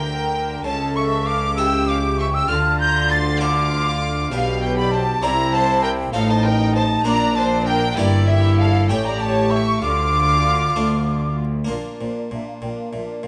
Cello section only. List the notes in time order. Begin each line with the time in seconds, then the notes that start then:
Already playing: D3
0.66 C#3
2.49 D3
4.32 B2
5.22 C3
6.14 A2
7.05 A#2
7.98 G2
8.89 A2
9.83 D3
10.77 D2
11.70 A#2
12.01 A#2
12.32 A#2
12.63 A#2
12.94 A#2
13.24 A#2